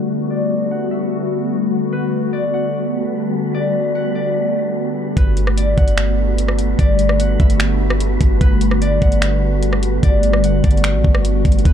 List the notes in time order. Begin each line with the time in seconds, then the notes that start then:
Already playing: D3 G3 A3 B3 F#4 B4 D5 F#5
0.30 D5
0.71 F#5
0.91 E5
1.92 G3 F#4 A4 B4
2.33 D5
2.54 F#5
3.54 D5
3.95 F#5
4.15 D5
5.17 G1 D3 G3 A3 B3 F#4 B4, kick, closed hi-hat
5.37 closed hi-hat
5.47 cross-stick
5.57 D5, closed hi-hat
5.77 G1 F#5, kick, closed hi-hat
5.88 closed hi-hat
5.98 finger snap, closed hi-hat
6.38 closed hi-hat
6.48 cross-stick
6.59 closed hi-hat
6.79 G1 D5, kick, closed hi-hat
6.99 closed hi-hat
7.09 cross-stick
7.20 F#5, closed hi-hat
7.40 G1 E5, kick, closed hi-hat
7.50 closed hi-hat
7.60 finger snap, closed hi-hat
7.90 cross-stick
8.00 closed hi-hat
8.21 G1, kick, closed hi-hat
8.41 G1 B4, kick, closed hi-hat
8.61 closed hi-hat
8.71 cross-stick
8.82 D5, closed hi-hat
9.02 G1 F#5, kick, closed hi-hat
9.12 closed hi-hat
9.22 finger snap, closed hi-hat
9.63 closed hi-hat
9.73 cross-stick
9.83 closed hi-hat
10.03 G1 D5, kick, closed hi-hat
10.23 closed hi-hat
10.33 cross-stick
10.44 F#5, closed hi-hat
10.64 G1 D5, kick, closed hi-hat
10.71 closed hi-hat
10.77 closed hi-hat
10.84 finger snap, closed hi-hat
10.94 A1
11.04 G1, kick
11.15 cross-stick
11.25 closed hi-hat
11.45 G1, kick, closed hi-hat
11.52 closed hi-hat
11.59 closed hi-hat
11.65 E1 E3 G3 D4 B4 D5, kick, closed hi-hat